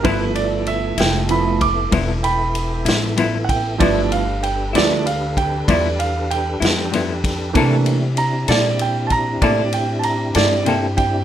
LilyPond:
<<
  \new Staff \with { instrumentName = "Grand piano" } { \time 12/8 \key g \mixolydian \tempo 4. = 64 b'8 d''8 e''8 g''8 b''8 d'''4 <g'' b''>4 r4 <fis'' g''>8 | d''8 f''8 g''8 d''8 f''8 g''8 d''8 f''8 g''2 | r4 bes''8 d''8 g''8 <a'' bes''>8 d''8 g''8 <a'' bes''>8 d''8 g''8 g''8 | }
  \new Staff \with { instrumentName = "Grand piano" } { \time 12/8 \key g \mixolydian <f a b e'>2 <f a b e'>8 r2. r8 | <f a b e'>8 r4 <f a b e'>8 r1 | <e a bes d'>8 r1 r4. | }
  \new Staff \with { instrumentName = "Tonewheel organ" } { \time 12/8 \key g \mixolydian <b e' a'>1. | <d' g' a' b'>1. | <c' d' e' g'>1. | }
  \new Staff \with { instrumentName = "Clean electric guitar" } { \time 12/8 \key g \mixolydian <g, f b e'>8 r4 <f b e'>8 r4 <g, f b e'>8 r4 <f b e'>8 <g, f b e'>8 r8 | <g, f b e'>8 r4 <f b e'>8 r4 <g, f b e'>8 r4 <f b e'>8 <g, f b e'>8 r8 | <c bes e' a'>8 r4 <bes e' a'>8 r4 <c bes e' a'>8 r4 <bes e' a'>8 <c bes e' a'>8 r8 | }
  \new Staff \with { instrumentName = "Upright bass" } { \clef bass \time 12/8 \key g \mixolydian g,,4. f,,4. e,,4. a,,4. | g,,4. d,4. e,4. f,4. | c4. bes,4. a,4. g,4. | }
  \new DrumStaff \with { instrumentName = "Drums" } \drummode { \time 12/8 <bd cymr>8 cymr8 cymr8 <cymr sn>8 cymr8 <bd cymr>8 <bd cymr>8 cymr8 cymr8 <cymr sn>8 cymr8 <bd cymr>8 | <bd cymr>8 cymr8 cymr8 <cymr sn>8 cymr8 <bd cymr>8 <bd cymr>8 cymr8 cymr8 <cymr sn>8 cymr8 <bd cymr sn>8 | <bd cymr>8 cymr8 cymr8 <cymr sn>8 cymr8 <bd cymr>8 <bd cymr>8 cymr8 cymr8 <cymr sn>8 cymr8 <bd cymr>8 | }
>>